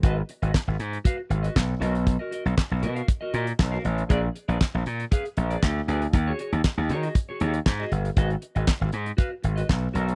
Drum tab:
HH |x-xx--xxx-xx--xx|x-xx--xxx-xx--xx|x-xx--xxxxxx--xx|x-xx--xxx-xx--xx|
CP |----x-------x---|----x-------x---|----x-------x---|----x-------x---|
SD |----o-------o---|----o-------o---|----o-------o---|----o-------o---|
BD |o---o---o---o---|o---o---o---o---|o---o---o---o---|o---o---o---o---|

HH |xxxx--xxx-xx--xx|
CP |----x-------x---|
SD |----o-------o---|
BD |o---o---o---o---|